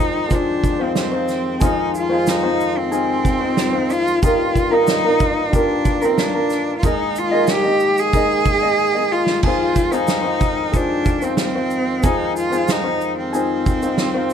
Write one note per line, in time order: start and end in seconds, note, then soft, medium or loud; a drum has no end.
0.00 4.19 F2 medium
0.00 4.19 D#3 medium
0.00 4.19 F3 medium
0.00 4.19 G#3 medium
0.00 0.30 D#4 soft
0.00 0.36 D#4 medium
0.00 0.27 F4 soft
0.00 0.30 C5 medium
0.00 1.59 G5 medium
0.28 0.80 F4 medium
0.28 0.79 G#4 medium
0.28 0.78 C5 medium
0.28 kick medium
0.28 shaker medium
0.35 0.85 D4 medium
0.64 kick medium
0.64 shaker soft
0.79 1.14 D#4 soft
0.79 1.13 F4 soft
0.79 1.10 C5 medium
0.83 0.98 C4 medium
0.95 1.66 C4 medium
0.95 snare loud
0.95 shaker medium
1.12 1.60 D#4 soft
1.12 1.61 F4 soft
1.12 1.61 C5 medium
1.28 snare soft
1.28 shaker soft
1.60 2.11 D#4 medium
1.60 6.79 F4 loud
1.60 2.09 F4 medium
1.60 2.10 G#4 medium
1.60 2.08 C5 medium
1.60 kick loud
1.60 shaker medium
1.65 1.96 D#4 medium
1.95 2.31 F4 medium
1.95 shaker medium
2.10 2.44 D#4 medium
2.10 2.42 F4 medium
2.10 2.44 G#4 medium
2.10 2.42 C5 medium
2.27 2.80 D#4 loud
2.27 snare loud
2.27 shaker medium
2.43 2.91 D#4 soft
2.43 2.92 F4 medium
2.43 2.92 C5 medium
2.60 shaker soft
2.78 3.93 C4 loud
2.91 3.41 D#4 medium
2.91 3.41 F4 medium
2.91 3.41 G#4 medium
2.91 3.39 C5 medium
2.91 shaker medium
3.25 kick medium
3.25 shaker medium
3.40 3.74 D#4 soft
3.40 3.73 F4 medium
3.40 3.71 C5 medium
3.57 snare loud
3.57 shaker medium
3.73 4.23 D#4 soft
3.73 4.23 F4 soft
3.73 4.22 C5 medium
3.90 4.24 F4 loud
3.90 shaker soft
4.07 shaker soft
4.22 6.81 G2 medium
4.22 14.33 D#3 medium
4.22 9.39 A#3 medium
4.22 4.71 D#4 medium
4.22 4.75 F4 medium
4.22 4.71 F4 medium
4.22 4.71 G4 medium
4.22 6.81 A#4 medium
4.22 4.70 A#4 medium
4.22 kick loud
4.22 shaker medium
4.56 kick medium
4.56 shaker medium
4.71 5.05 D#4 medium
4.71 5.56 D#4 loud
4.71 5.04 F4 medium
4.71 5.05 G4 medium
4.71 5.03 A#4 medium
4.87 snare loud
4.87 shaker medium
5.05 5.54 D#4 soft
5.05 5.53 F4 medium
5.05 5.53 A#4 medium
5.20 kick medium
5.20 shaker soft
5.52 6.07 D4 loud
5.52 6.03 F4 medium
5.52 6.01 G4 medium
5.52 6.00 A#4 medium
5.52 kick loud
5.52 shaker medium
5.85 kick loud
5.85 shaker medium
6.01 6.21 C4 medium
6.01 6.36 D#4 soft
6.01 6.36 F4 medium
6.01 6.33 A#4 medium
6.01 shaker medium
6.18 6.77 D4 loud
6.18 snare loud
6.18 shaker medium
6.35 6.84 F4 soft
6.35 6.82 A#4 soft
6.50 snare soft
6.50 shaker soft
6.78 6.86 F4 medium
6.83 9.41 G#2 medium
6.83 9.41 G#3 medium
6.83 7.20 D#4 loud
6.83 7.32 D#4 medium
6.83 7.31 G#4 medium
6.83 7.32 A#4 medium
6.83 9.41 D#5 medium
6.83 7.30 D#5 medium
6.83 kick loud
6.83 shaker medium
7.16 7.52 F4 loud
7.16 shaker medium
7.31 7.65 D#4 medium
7.31 7.65 G#4 medium
7.31 7.66 A#4 medium
7.31 7.63 D#5 medium
7.47 8.01 G4 loud
7.47 snare loud
7.47 shaker medium
7.64 8.13 D#4 soft
7.64 8.13 D#5 medium
7.80 shaker soft
7.97 9.14 G#4 loud
7.97 shaker medium
8.13 8.63 D#4 medium
8.13 8.63 G#4 medium
8.13 8.62 A#4 medium
8.13 8.61 D#5 medium
8.13 kick medium
8.13 shaker medium
8.45 kick loud
8.45 shaker medium
8.62 8.96 D#4 soft
8.62 8.96 G#4 soft
8.62 8.94 D#5 medium
8.95 9.44 D#4 soft
8.95 9.42 G#4 soft
8.95 9.44 D#5 soft
9.12 9.44 F4 loud
9.26 snare loud
9.43 14.33 F2 medium
9.43 14.33 G#3 medium
9.43 9.92 D#4 medium
9.43 9.95 F4 medium
9.43 9.91 F4 medium
9.43 9.92 G#4 medium
9.43 14.33 F5 medium
9.43 14.33 G5 medium
9.43 kick loud
9.43 crash medium
9.47 9.90 C5 medium
9.76 kick medium
9.76 shaker medium
9.91 10.78 D#4 loud
9.91 10.25 D#4 medium
9.91 10.25 F4 medium
9.91 10.25 G#4 medium
9.91 10.23 C5 medium
9.91 shaker medium
10.08 snare loud
10.08 shaker medium
10.24 10.74 D#4 soft
10.24 10.71 F4 medium
10.24 10.73 C5 medium
10.41 kick medium
10.41 shaker soft
10.72 11.22 F4 medium
10.72 11.21 G#4 medium
10.72 11.21 C5 medium
10.72 kick medium
10.72 shaker medium
10.76 11.25 D4 loud
11.05 kick medium
11.05 shaker soft
11.22 11.39 C4 medium
11.22 11.56 D#4 soft
11.22 11.55 F4 medium
11.22 11.54 C5 medium
11.22 shaker medium
11.37 12.06 C4 loud
11.37 snare loud
11.37 shaker medium
11.55 12.03 D#4 soft
11.55 12.04 F4 soft
11.55 12.04 C5 medium
11.70 shaker soft
12.03 12.51 D#4 medium
12.03 12.37 D#4 medium
12.03 12.51 F4 medium
12.03 12.52 G#4 medium
12.03 12.50 C5 medium
12.03 kick loud
12.03 shaker medium
12.36 12.72 F4 medium
12.36 shaker medium
12.51 12.85 D#4 medium
12.51 12.84 F4 medium
12.51 12.85 G#4 medium
12.51 12.82 C5 medium
12.51 shaker medium
12.68 13.17 D#4 loud
12.68 snare loud
12.68 shaker medium
12.84 13.33 D#4 soft
12.84 13.34 F4 soft
12.84 13.33 C5 medium
13.01 shaker soft
13.18 14.33 C4 medium
13.32 13.83 D#4 medium
13.32 13.83 F4 medium
13.32 13.82 G#4 medium
13.32 13.81 C5 medium
13.32 shaker medium
13.66 kick loud
13.66 shaker medium
13.82 14.16 D#4 soft
13.82 14.15 F4 soft
13.82 14.13 C5 medium
13.82 shaker medium
13.98 snare loud
13.98 shaker medium
14.14 14.33 D#4 soft
14.14 14.33 F4 soft
14.14 14.33 C5 medium
14.30 shaker soft